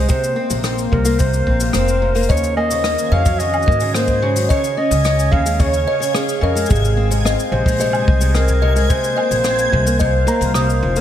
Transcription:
Already playing: G#4 C5 D#5
0.09 C3 A#3 C5, kick, open hi-hat, cabasa
0.24 cabasa
0.36 C4
0.45 A#4 F5
0.50 A#1 C3, open hi-hat, cabasa
0.64 C4, cross-stick, open hi-hat, cabasa
0.78 cabasa
0.92 C2 C3 A#4, kick
1.05 A#3, open hi-hat, cabasa
1.19 C3 C5, kick, open hi-hat, cabasa
1.34 cabasa
1.47 A#1 C4, kick
1.60 C3, open hi-hat, cabasa
1.73 F1 C4 C5, cross-stick, open hi-hat, cabasa
1.88 cabasa
2.02 C3
2.15 A#3, open hi-hat, cabasa
2.23 cabasa
2.28 D#2 C#3 D#3 C#5 D#5 G#5 G#6, kick, open hi-hat, cabasa
2.37 C#4, cabasa
2.44 cabasa
2.57 A#3 D#5, low woodblock
2.71 C#3, open hi-hat, cabasa
2.84 A#3, cross-stick, open hi-hat, cabasa
2.94 F#4
2.99 cabasa
3.12 F2 C#3 D#5 F5
3.26 F#3 D#5, kick, open hi-hat, cabasa
3.39 C#3 D#5, open hi-hat, cabasa
3.54 cabasa, low woodblock
3.62 D#5, cabasa
3.67 G#2 A#3, kick
3.72 cabasa
3.80 C#3, open hi-hat, cabasa
3.94 A#3 C5, cross-stick, open hi-hat, cabasa
4.08 kick, cabasa
4.22 C#3
4.36 F#3, open hi-hat, cabasa
4.49 C#3 C#5 D#5, kick, open hi-hat, cabasa
4.64 cabasa
4.77 C#4 D#5
4.91 C#2 C#3 G#4, open hi-hat, cabasa
5.04 C#4 D#5, cross-stick, open hi-hat, cabasa
5.19 cabasa
5.32 D#2 C#3 F5, kick
5.46 G#3, open hi-hat, cabasa
5.59 C#3 C#5, kick, open hi-hat, cabasa
5.74 cabasa
5.87 C#4 D#5
6.00 C#3, open hi-hat, cabasa
6.14 C#4 G#4, cross-stick, open hi-hat, cabasa
6.29 cabasa
6.41 F2 C#3 A#4 D#5
6.55 G#3, open hi-hat, cabasa
6.66 C3 G#3, cabasa
6.70 G#1 G#4, kick, open hi-hat, cabasa
6.75 cabasa
6.85 cabasa
6.97 C4
7.11 C3 C5, open hi-hat, cabasa
7.25 C4 D#5, cross-stick, open hi-hat, cabasa
7.40 cabasa
7.52 A#1 C3 C5
7.66 G#3 D#5, kick, open hi-hat, cabasa
7.70 open hi-hat
7.72 open hi-hat
7.74 open hi-hat
7.76 open hi-hat
7.78 C3, open hi-hat
7.80 D#5, open hi-hat, cabasa
7.93 cabasa, low woodblock
8.07 C2 C4, kick
8.21 C3, open hi-hat, cabasa
8.35 C4 A#4, cross-stick, open hi-hat, cabasa
8.48 kick, cabasa
8.62 C3 D#5
8.76 G#3, open hi-hat, cabasa
8.90 C3 A#3 C5, kick, open hi-hat, cabasa
9.04 A#4, cabasa
9.16 C4 D#5, low woodblock
9.21 F5
9.31 A#1 C3, open hi-hat, cabasa
9.44 C4, cross-stick, open hi-hat, cabasa
9.59 cabasa
9.72 C2 C3, kick
9.86 A#3, open hi-hat, cabasa
9.99 C3 C5 D#5, kick, open hi-hat, cabasa
10.27 A#3 A#5, cabasa
10.41 C2 C3, open hi-hat, cabasa
10.54 C3 C5 D#6, cross-stick, open hi-hat, cabasa
10.70 cabasa
10.83 F1 F3
10.96 A#3, open hi-hat, cabasa

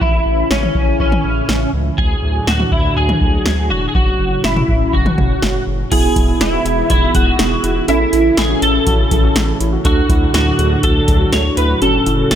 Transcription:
Already playing: E3
0.01 A1 A2 C#3 C#4 E4, kick
0.26 A1
0.51 A1 C#4, snare
0.63 mid tom
0.75 A1, kick
1.00 A1 C#4, kick
1.12 mid tom
1.24 A1
1.49 A1, snare
1.73 C#2
1.98 D2 D3 F#3 D4 F#4 G#4, kick
2.23 D2
2.47 D2 F#4, snare
2.60 mid tom
2.72 D2 E4, kick
2.97 D2 G#4
3.09 mid tom
3.21 D2, kick
3.46 D2, snare
3.70 E1 F#4
3.88 G#4
3.95 F#1 A2 C#3 C#4 F#4, kick
4.19 F#1
4.44 F#1 E4, snare
4.56 mid tom
4.69 F#1, kick
4.93 F#1 F#4, kick
5.06 mid tom
5.18 F#1, kick, mid tom
5.42 F#1, snare
5.67 F#1
5.91 E1 G#2 B2 E3 B3 E4 G#4, kick, closed hi-hat, crash
6.04 G#4
6.16 E1 E4, kick, closed hi-hat
6.28 E4
6.41 E1 E4, snare, closed hi-hat
6.53 F#4
6.65 E1 G#4, closed hi-hat
6.90 E1 E4 F#4, kick, closed hi-hat
7.14 E1 F#4 G#4, kick, closed hi-hat
7.27 F#4
7.39 E1 B3 E4 G#4, snare, closed hi-hat
7.64 E1 E4, closed hi-hat
7.76 F#4
7.88 A1 A2 C#3 E3 C#4 E4 A4, closed hi-hat
8.01 G#4
8.13 A1 E4, closed hi-hat
8.25 E4
8.37 A1 E4 G#4, snare, closed hi-hat
8.50 F#4
8.62 A1 G#4 A4, closed hi-hat
8.87 A1 F#4, kick, closed hi-hat
9.11 A1 C#4 E4 G#4 A4, kick, closed hi-hat
9.24 F#4
9.36 A1 G#4, snare, closed hi-hat
9.60 A1 E4, closed hi-hat
9.73 F#4
9.85 D2 D3 F#3 D4 F#4 A4, kick, closed hi-hat
9.97 F#4
10.09 D2 E4, kick, closed hi-hat
10.22 E4
10.34 D2 E4 F#4, snare, closed hi-hat
10.47 F#4
10.59 D2 G#4, closed hi-hat
10.83 D2 F#4 A4, kick, closed hi-hat
11.08 D2 G#4, kick, closed hi-hat
11.20 F#4
11.32 D2 D4 F#4 G#4 A4 C#5, snare, closed hi-hat
11.57 D2 E4 B4, closed hi-hat
11.70 F#4
11.82 F#1 C#3 C#4 F#4 A4, closed hi-hat
11.94 F#4
12.06 F#1 E4, closed hi-hat
12.19 E4
12.31 F#1 E4 A4, snare, closed hi-hat

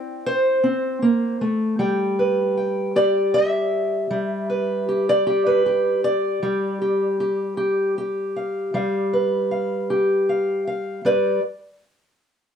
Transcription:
Already playing: C4 E4 D5 G5
0.26 C5
0.64 C4
1.02 A#3
1.41 A3
1.79 G3 G5
2.19 B4
2.57 G5
2.96 G4 D5
3.34 E5
4.11 G3
4.50 B4
4.89 G4
5.09 D5
5.27 G4
5.46 B4
5.66 G4
6.04 D5
6.43 G3 G4
6.82 G4
7.20 G4
7.57 G4
7.98 G4
8.36 F5
8.74 G3 F5
9.13 B4
9.51 F5
9.90 G4
10.29 F5
10.67 F5
11.05 G3 B4 D5

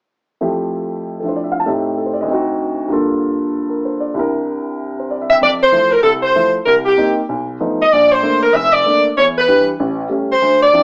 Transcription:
0.41 F2 F3 A3 E4 G4
1.20 F3 D4 A4
1.25 E4 C5
1.36 D5
1.44 E5
1.52 F5
1.60 A5
1.66 A2 A3 C4 D#4 G4
1.98 A4
2.06 C5
2.14 D5
2.21 D2 D#5
2.25 D3 C4
2.30 D#4 F#4
2.88 G2 D3 A#3 F4
2.93 A4
3.70 A#4
3.85 C5
4.00 D5
4.14 C2 C3 D4 E4
4.19 A#4
5.00 C5
5.11 D5
5.21 E5
5.30 E5 G5
5.41 F2 D5
5.62 C5
5.72 F3 A3 E4
5.92 A#4
6.03 C2 A4
6.23 C5
6.35 F3 A3 E4
6.66 C2 A#4
6.86 G4
6.97 A#3 C4 D#4
7.29 B1
7.60 F3 A3 B3 D#4
7.82 D#5
7.92 A#1 D5
8.12 C5
8.23 A3 A#3 D4
8.43 A#4
8.54 F1 E5
8.74 D5
8.86 A3 A#3 D4
9.17 E2 C#5
9.38 B4
9.48 E3 G3 D4
9.80 A1
10.09 G3 A3 C#4
10.32 C5
10.42 D2
10.63 D5
10.73 F3 C4 D4 E4

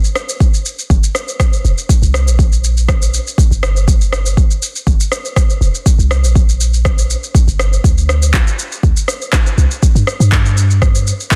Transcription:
0.04 shaker
0.15 cross-stick, shaker
0.29 shaker
0.40 kick, shaker
0.54 shaker
0.66 shaker
0.79 shaker
0.90 G1, kick, shaker
1.04 shaker
1.15 cross-stick, shaker
1.28 shaker
1.40 kick, cross-stick, shaker
1.53 shaker
1.65 F1, shaker
1.78 shaker
1.89 kick, shaker
2.02 C2, shaker
2.14 cross-stick, shaker
2.27 A#1, shaker
2.39 kick, shaker
2.52 shaker
2.64 shaker
2.77 shaker
2.88 kick, cross-stick, shaker
3.02 shaker
3.14 shaker
3.27 shaker
3.38 kick, shaker
3.51 G1, shaker
3.63 cross-stick, shaker
3.76 shaker
3.88 kick, shaker
4.01 shaker
4.13 cross-stick, shaker
4.26 shaker
4.37 kick, shaker
4.51 shaker
4.62 shaker
4.76 shaker
4.87 G1, kick, shaker
5.00 shaker
5.12 cross-stick, shaker
5.25 shaker
5.36 kick, cross-stick, shaker
5.50 shaker
5.61 F1, shaker
5.75 shaker
5.86 kick, shaker
5.99 C2, shaker
6.11 cross-stick, shaker
6.24 A#1, shaker
6.35 kick, shaker
6.49 shaker
6.61 shaker
6.74 shaker
6.85 kick, cross-stick, shaker
6.98 shaker
7.10 shaker
7.23 shaker
7.35 kick, shaker
7.48 G1, shaker
7.59 cross-stick, shaker
7.73 shaker
7.84 D2, kick, shaker
7.98 shaker
8.09 cross-stick, shaker
8.23 shaker
8.34 kick, clap, shaker
8.47 shaker
8.59 shaker
8.72 shaker
8.83 D2, kick, shaker
8.97 shaker
9.08 cross-stick, shaker
9.22 shaker
9.33 kick, cross-stick, clap, shaker
9.46 shaker
9.58 C2, shaker
9.71 shaker
9.83 kick, shaker
9.95 G2, shaker
10.07 cross-stick, shaker
10.20 G2, shaker
10.32 kick, clap, shaker
10.46 shaker
10.57 shaker
10.71 shaker
10.82 kick, cross-stick, shaker
10.95 shaker
11.07 shaker
11.20 shaker
11.31 kick, clap, shaker

